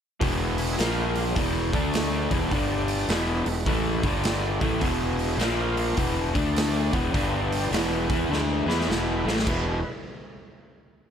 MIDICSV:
0, 0, Header, 1, 5, 480
1, 0, Start_track
1, 0, Tempo, 576923
1, 171, Time_signature, 4, 2, 24, 8
1, 4491, Tempo, 582524
1, 9192, End_track
2, 0, Start_track
2, 0, Title_t, "Tonewheel organ"
2, 0, Program_c, 0, 16
2, 180, Note_on_c, 0, 76, 70
2, 185, Note_on_c, 0, 68, 71
2, 189, Note_on_c, 0, 59, 65
2, 650, Note_off_c, 0, 76, 0
2, 652, Note_off_c, 0, 68, 0
2, 655, Note_off_c, 0, 59, 0
2, 661, Note_on_c, 0, 65, 65
2, 672, Note_on_c, 0, 77, 67
2, 1130, Note_off_c, 0, 65, 0
2, 1135, Note_off_c, 0, 77, 0
2, 1445, Note_on_c, 0, 62, 69
2, 1447, Note_on_c, 0, 57, 69
2, 1447, Note_on_c, 0, 74, 68
2, 1916, Note_off_c, 0, 57, 0
2, 1916, Note_off_c, 0, 62, 0
2, 1917, Note_off_c, 0, 74, 0
2, 2090, Note_on_c, 0, 74, 74
2, 2096, Note_on_c, 0, 55, 71
2, 2099, Note_on_c, 0, 62, 69
2, 2563, Note_off_c, 0, 74, 0
2, 2566, Note_off_c, 0, 55, 0
2, 2568, Note_off_c, 0, 62, 0
2, 2570, Note_on_c, 0, 71, 67
2, 2572, Note_on_c, 0, 64, 65
2, 2577, Note_on_c, 0, 56, 63
2, 3344, Note_on_c, 0, 55, 71
2, 3346, Note_on_c, 0, 74, 69
2, 3350, Note_off_c, 0, 71, 0
2, 3351, Note_off_c, 0, 64, 0
2, 3352, Note_on_c, 0, 62, 72
2, 3353, Note_off_c, 0, 56, 0
2, 3824, Note_on_c, 0, 76, 70
2, 3826, Note_off_c, 0, 55, 0
2, 3827, Note_off_c, 0, 74, 0
2, 3829, Note_on_c, 0, 59, 65
2, 3829, Note_on_c, 0, 68, 66
2, 3830, Note_off_c, 0, 62, 0
2, 4477, Note_off_c, 0, 76, 0
2, 4477, Note_on_c, 0, 77, 63
2, 4480, Note_off_c, 0, 59, 0
2, 4480, Note_off_c, 0, 68, 0
2, 4483, Note_on_c, 0, 58, 66
2, 4483, Note_on_c, 0, 65, 62
2, 4957, Note_off_c, 0, 77, 0
2, 4960, Note_off_c, 0, 58, 0
2, 4960, Note_off_c, 0, 65, 0
2, 5270, Note_on_c, 0, 74, 68
2, 5271, Note_on_c, 0, 57, 66
2, 5276, Note_on_c, 0, 62, 67
2, 5747, Note_off_c, 0, 57, 0
2, 5747, Note_off_c, 0, 74, 0
2, 5750, Note_off_c, 0, 62, 0
2, 5923, Note_on_c, 0, 55, 69
2, 5930, Note_on_c, 0, 62, 72
2, 5930, Note_on_c, 0, 74, 70
2, 6399, Note_off_c, 0, 55, 0
2, 6403, Note_off_c, 0, 62, 0
2, 6403, Note_off_c, 0, 74, 0
2, 6410, Note_on_c, 0, 64, 62
2, 6410, Note_on_c, 0, 71, 67
2, 6411, Note_on_c, 0, 56, 66
2, 7823, Note_off_c, 0, 64, 0
2, 7825, Note_off_c, 0, 71, 0
2, 7832, Note_off_c, 0, 56, 0
2, 7833, Note_on_c, 0, 64, 74
2, 7835, Note_on_c, 0, 71, 64
2, 7842, Note_on_c, 0, 56, 69
2, 8215, Note_off_c, 0, 64, 0
2, 8215, Note_off_c, 0, 71, 0
2, 8219, Note_off_c, 0, 56, 0
2, 9192, End_track
3, 0, Start_track
3, 0, Title_t, "Overdriven electric guitar"
3, 0, Program_c, 1, 29
3, 171, Note_on_c, 1, 40, 86
3, 174, Note_on_c, 1, 47, 92
3, 176, Note_on_c, 1, 52, 97
3, 644, Note_off_c, 1, 47, 0
3, 645, Note_off_c, 1, 40, 0
3, 647, Note_off_c, 1, 52, 0
3, 648, Note_on_c, 1, 46, 93
3, 652, Note_on_c, 1, 53, 99
3, 656, Note_on_c, 1, 58, 105
3, 1123, Note_off_c, 1, 46, 0
3, 1125, Note_off_c, 1, 53, 0
3, 1127, Note_off_c, 1, 58, 0
3, 1127, Note_on_c, 1, 40, 88
3, 1131, Note_on_c, 1, 47, 98
3, 1137, Note_on_c, 1, 52, 92
3, 1427, Note_off_c, 1, 40, 0
3, 1429, Note_off_c, 1, 47, 0
3, 1432, Note_off_c, 1, 52, 0
3, 1449, Note_on_c, 1, 50, 88
3, 1452, Note_on_c, 1, 57, 92
3, 1453, Note_on_c, 1, 62, 101
3, 1913, Note_off_c, 1, 50, 0
3, 1915, Note_off_c, 1, 57, 0
3, 1915, Note_off_c, 1, 62, 0
3, 1922, Note_on_c, 1, 40, 91
3, 1928, Note_on_c, 1, 47, 102
3, 1931, Note_on_c, 1, 52, 99
3, 2085, Note_off_c, 1, 40, 0
3, 2088, Note_off_c, 1, 47, 0
3, 2089, Note_off_c, 1, 52, 0
3, 2094, Note_on_c, 1, 43, 79
3, 2100, Note_on_c, 1, 50, 84
3, 2106, Note_on_c, 1, 55, 100
3, 2565, Note_off_c, 1, 43, 0
3, 2568, Note_off_c, 1, 50, 0
3, 2571, Note_off_c, 1, 55, 0
3, 2572, Note_on_c, 1, 40, 93
3, 2574, Note_on_c, 1, 47, 92
3, 2578, Note_on_c, 1, 52, 95
3, 2869, Note_off_c, 1, 40, 0
3, 2870, Note_off_c, 1, 47, 0
3, 2872, Note_off_c, 1, 52, 0
3, 2885, Note_on_c, 1, 40, 64
3, 2887, Note_on_c, 1, 47, 71
3, 3017, Note_off_c, 1, 40, 0
3, 3018, Note_off_c, 1, 47, 0
3, 3045, Note_on_c, 1, 45, 83
3, 3049, Note_on_c, 1, 52, 99
3, 3054, Note_on_c, 1, 57, 96
3, 3346, Note_off_c, 1, 45, 0
3, 3348, Note_off_c, 1, 52, 0
3, 3350, Note_off_c, 1, 57, 0
3, 3356, Note_on_c, 1, 43, 85
3, 3357, Note_on_c, 1, 50, 96
3, 3362, Note_on_c, 1, 55, 99
3, 3828, Note_off_c, 1, 43, 0
3, 3828, Note_off_c, 1, 50, 0
3, 3831, Note_off_c, 1, 55, 0
3, 3835, Note_on_c, 1, 45, 86
3, 3837, Note_on_c, 1, 52, 93
3, 3840, Note_on_c, 1, 57, 99
3, 3999, Note_off_c, 1, 52, 0
3, 4001, Note_off_c, 1, 45, 0
3, 4001, Note_on_c, 1, 40, 93
3, 4004, Note_on_c, 1, 47, 97
3, 4005, Note_off_c, 1, 57, 0
3, 4009, Note_on_c, 1, 52, 105
3, 4474, Note_off_c, 1, 47, 0
3, 4478, Note_on_c, 1, 46, 83
3, 4481, Note_off_c, 1, 40, 0
3, 4481, Note_off_c, 1, 52, 0
3, 4485, Note_on_c, 1, 53, 96
3, 4488, Note_on_c, 1, 58, 103
3, 4957, Note_off_c, 1, 46, 0
3, 4960, Note_off_c, 1, 53, 0
3, 4960, Note_on_c, 1, 40, 97
3, 4960, Note_on_c, 1, 47, 98
3, 4962, Note_off_c, 1, 58, 0
3, 4965, Note_on_c, 1, 52, 96
3, 5263, Note_off_c, 1, 40, 0
3, 5263, Note_off_c, 1, 47, 0
3, 5265, Note_off_c, 1, 52, 0
3, 5270, Note_on_c, 1, 50, 97
3, 5275, Note_on_c, 1, 57, 97
3, 5279, Note_on_c, 1, 62, 101
3, 5743, Note_off_c, 1, 50, 0
3, 5745, Note_off_c, 1, 57, 0
3, 5747, Note_off_c, 1, 62, 0
3, 5752, Note_on_c, 1, 40, 91
3, 5752, Note_on_c, 1, 47, 99
3, 5758, Note_on_c, 1, 52, 105
3, 5927, Note_off_c, 1, 40, 0
3, 5927, Note_on_c, 1, 43, 84
3, 5930, Note_off_c, 1, 47, 0
3, 5930, Note_on_c, 1, 50, 94
3, 5932, Note_off_c, 1, 52, 0
3, 5932, Note_on_c, 1, 55, 96
3, 6401, Note_off_c, 1, 43, 0
3, 6402, Note_off_c, 1, 50, 0
3, 6404, Note_off_c, 1, 55, 0
3, 6406, Note_on_c, 1, 40, 91
3, 6410, Note_on_c, 1, 47, 84
3, 6412, Note_on_c, 1, 52, 97
3, 6699, Note_off_c, 1, 52, 0
3, 6705, Note_off_c, 1, 40, 0
3, 6705, Note_off_c, 1, 47, 0
3, 6708, Note_on_c, 1, 52, 90
3, 6710, Note_on_c, 1, 59, 94
3, 6718, Note_on_c, 1, 64, 103
3, 6877, Note_off_c, 1, 52, 0
3, 6878, Note_off_c, 1, 59, 0
3, 6882, Note_off_c, 1, 64, 0
3, 6883, Note_on_c, 1, 50, 96
3, 6889, Note_on_c, 1, 57, 89
3, 6889, Note_on_c, 1, 62, 99
3, 7184, Note_off_c, 1, 50, 0
3, 7187, Note_off_c, 1, 57, 0
3, 7187, Note_off_c, 1, 62, 0
3, 7190, Note_on_c, 1, 52, 99
3, 7196, Note_on_c, 1, 59, 87
3, 7196, Note_on_c, 1, 64, 101
3, 7359, Note_off_c, 1, 52, 0
3, 7362, Note_off_c, 1, 59, 0
3, 7362, Note_off_c, 1, 64, 0
3, 7367, Note_on_c, 1, 40, 93
3, 7370, Note_on_c, 1, 47, 85
3, 7374, Note_on_c, 1, 52, 101
3, 7664, Note_off_c, 1, 52, 0
3, 7665, Note_off_c, 1, 47, 0
3, 7667, Note_off_c, 1, 40, 0
3, 7669, Note_on_c, 1, 45, 90
3, 7674, Note_on_c, 1, 52, 85
3, 7677, Note_on_c, 1, 57, 100
3, 7838, Note_off_c, 1, 45, 0
3, 7839, Note_on_c, 1, 40, 99
3, 7841, Note_off_c, 1, 52, 0
3, 7843, Note_off_c, 1, 57, 0
3, 7850, Note_on_c, 1, 47, 98
3, 7854, Note_on_c, 1, 52, 91
3, 8091, Note_off_c, 1, 40, 0
3, 8096, Note_off_c, 1, 47, 0
3, 8098, Note_off_c, 1, 52, 0
3, 9192, End_track
4, 0, Start_track
4, 0, Title_t, "Fingered electric bass"
4, 0, Program_c, 2, 33
4, 177, Note_on_c, 2, 28, 92
4, 620, Note_off_c, 2, 28, 0
4, 662, Note_on_c, 2, 34, 89
4, 1102, Note_off_c, 2, 34, 0
4, 1132, Note_on_c, 2, 28, 91
4, 1418, Note_off_c, 2, 28, 0
4, 1438, Note_on_c, 2, 38, 92
4, 1884, Note_off_c, 2, 38, 0
4, 1926, Note_on_c, 2, 28, 96
4, 2080, Note_off_c, 2, 28, 0
4, 2092, Note_on_c, 2, 31, 91
4, 2536, Note_off_c, 2, 31, 0
4, 2565, Note_on_c, 2, 28, 90
4, 2853, Note_off_c, 2, 28, 0
4, 2877, Note_on_c, 2, 28, 82
4, 3036, Note_off_c, 2, 28, 0
4, 3043, Note_on_c, 2, 33, 90
4, 3333, Note_off_c, 2, 33, 0
4, 3355, Note_on_c, 2, 31, 88
4, 3803, Note_off_c, 2, 31, 0
4, 3843, Note_on_c, 2, 33, 95
4, 4000, Note_off_c, 2, 33, 0
4, 4011, Note_on_c, 2, 28, 92
4, 4458, Note_off_c, 2, 28, 0
4, 4466, Note_on_c, 2, 34, 91
4, 4923, Note_off_c, 2, 34, 0
4, 4966, Note_on_c, 2, 28, 92
4, 5253, Note_off_c, 2, 28, 0
4, 5278, Note_on_c, 2, 38, 92
4, 5723, Note_off_c, 2, 38, 0
4, 5753, Note_on_c, 2, 28, 92
4, 5913, Note_off_c, 2, 28, 0
4, 5927, Note_on_c, 2, 31, 98
4, 6373, Note_off_c, 2, 31, 0
4, 6397, Note_on_c, 2, 28, 92
4, 6688, Note_off_c, 2, 28, 0
4, 6712, Note_on_c, 2, 40, 92
4, 6866, Note_off_c, 2, 40, 0
4, 6871, Note_on_c, 2, 38, 91
4, 7165, Note_off_c, 2, 38, 0
4, 7179, Note_on_c, 2, 40, 95
4, 7346, Note_off_c, 2, 40, 0
4, 7357, Note_on_c, 2, 28, 96
4, 7649, Note_off_c, 2, 28, 0
4, 7662, Note_on_c, 2, 33, 93
4, 7828, Note_off_c, 2, 33, 0
4, 7844, Note_on_c, 2, 28, 91
4, 8133, Note_off_c, 2, 28, 0
4, 9192, End_track
5, 0, Start_track
5, 0, Title_t, "Drums"
5, 178, Note_on_c, 9, 36, 101
5, 182, Note_on_c, 9, 46, 75
5, 261, Note_off_c, 9, 36, 0
5, 265, Note_off_c, 9, 46, 0
5, 482, Note_on_c, 9, 46, 58
5, 565, Note_off_c, 9, 46, 0
5, 656, Note_on_c, 9, 46, 78
5, 670, Note_on_c, 9, 38, 104
5, 739, Note_off_c, 9, 46, 0
5, 753, Note_off_c, 9, 38, 0
5, 960, Note_on_c, 9, 46, 61
5, 1044, Note_off_c, 9, 46, 0
5, 1132, Note_on_c, 9, 46, 86
5, 1135, Note_on_c, 9, 36, 95
5, 1215, Note_off_c, 9, 46, 0
5, 1218, Note_off_c, 9, 36, 0
5, 1441, Note_on_c, 9, 46, 62
5, 1443, Note_on_c, 9, 36, 112
5, 1524, Note_off_c, 9, 46, 0
5, 1526, Note_off_c, 9, 36, 0
5, 1611, Note_on_c, 9, 46, 86
5, 1625, Note_on_c, 9, 38, 113
5, 1694, Note_off_c, 9, 46, 0
5, 1708, Note_off_c, 9, 38, 0
5, 1923, Note_on_c, 9, 36, 109
5, 1924, Note_on_c, 9, 46, 59
5, 2006, Note_off_c, 9, 36, 0
5, 2007, Note_off_c, 9, 46, 0
5, 2092, Note_on_c, 9, 36, 100
5, 2092, Note_on_c, 9, 46, 72
5, 2175, Note_off_c, 9, 36, 0
5, 2175, Note_off_c, 9, 46, 0
5, 2396, Note_on_c, 9, 46, 54
5, 2479, Note_off_c, 9, 46, 0
5, 2567, Note_on_c, 9, 46, 74
5, 2582, Note_on_c, 9, 38, 102
5, 2651, Note_off_c, 9, 46, 0
5, 2665, Note_off_c, 9, 38, 0
5, 2879, Note_on_c, 9, 46, 59
5, 2962, Note_off_c, 9, 46, 0
5, 3048, Note_on_c, 9, 36, 101
5, 3049, Note_on_c, 9, 46, 72
5, 3132, Note_off_c, 9, 36, 0
5, 3133, Note_off_c, 9, 46, 0
5, 3355, Note_on_c, 9, 46, 55
5, 3357, Note_on_c, 9, 36, 101
5, 3438, Note_off_c, 9, 46, 0
5, 3440, Note_off_c, 9, 36, 0
5, 3524, Note_on_c, 9, 46, 81
5, 3538, Note_on_c, 9, 38, 118
5, 3607, Note_off_c, 9, 46, 0
5, 3622, Note_off_c, 9, 38, 0
5, 3837, Note_on_c, 9, 46, 56
5, 3838, Note_on_c, 9, 36, 107
5, 3920, Note_off_c, 9, 46, 0
5, 3921, Note_off_c, 9, 36, 0
5, 4002, Note_on_c, 9, 46, 77
5, 4007, Note_on_c, 9, 36, 104
5, 4086, Note_off_c, 9, 46, 0
5, 4090, Note_off_c, 9, 36, 0
5, 4318, Note_on_c, 9, 46, 54
5, 4401, Note_off_c, 9, 46, 0
5, 4489, Note_on_c, 9, 46, 70
5, 4503, Note_on_c, 9, 38, 106
5, 4572, Note_off_c, 9, 46, 0
5, 4586, Note_off_c, 9, 38, 0
5, 4800, Note_on_c, 9, 46, 60
5, 4882, Note_off_c, 9, 46, 0
5, 4961, Note_on_c, 9, 46, 77
5, 4968, Note_on_c, 9, 36, 96
5, 5044, Note_off_c, 9, 46, 0
5, 5050, Note_off_c, 9, 36, 0
5, 5277, Note_on_c, 9, 36, 101
5, 5277, Note_on_c, 9, 46, 64
5, 5359, Note_off_c, 9, 36, 0
5, 5359, Note_off_c, 9, 46, 0
5, 5452, Note_on_c, 9, 46, 90
5, 5466, Note_on_c, 9, 38, 117
5, 5534, Note_off_c, 9, 46, 0
5, 5548, Note_off_c, 9, 38, 0
5, 5754, Note_on_c, 9, 46, 61
5, 5756, Note_on_c, 9, 36, 106
5, 5837, Note_off_c, 9, 46, 0
5, 5839, Note_off_c, 9, 36, 0
5, 5929, Note_on_c, 9, 36, 104
5, 5933, Note_on_c, 9, 46, 79
5, 6012, Note_off_c, 9, 36, 0
5, 6016, Note_off_c, 9, 46, 0
5, 6242, Note_on_c, 9, 46, 57
5, 6324, Note_off_c, 9, 46, 0
5, 6410, Note_on_c, 9, 46, 81
5, 6424, Note_on_c, 9, 38, 104
5, 6493, Note_off_c, 9, 46, 0
5, 6507, Note_off_c, 9, 38, 0
5, 6715, Note_on_c, 9, 36, 109
5, 6717, Note_on_c, 9, 46, 60
5, 6798, Note_off_c, 9, 36, 0
5, 6799, Note_off_c, 9, 46, 0
5, 6908, Note_on_c, 9, 38, 62
5, 6990, Note_off_c, 9, 38, 0
5, 7210, Note_on_c, 9, 38, 72
5, 7292, Note_off_c, 9, 38, 0
5, 7302, Note_on_c, 9, 38, 63
5, 7384, Note_off_c, 9, 38, 0
5, 7388, Note_on_c, 9, 38, 95
5, 7470, Note_off_c, 9, 38, 0
5, 7694, Note_on_c, 9, 38, 98
5, 7777, Note_off_c, 9, 38, 0
5, 7781, Note_on_c, 9, 38, 86
5, 7844, Note_on_c, 9, 49, 87
5, 7845, Note_on_c, 9, 36, 100
5, 7863, Note_off_c, 9, 38, 0
5, 7927, Note_off_c, 9, 36, 0
5, 7927, Note_off_c, 9, 49, 0
5, 9192, End_track
0, 0, End_of_file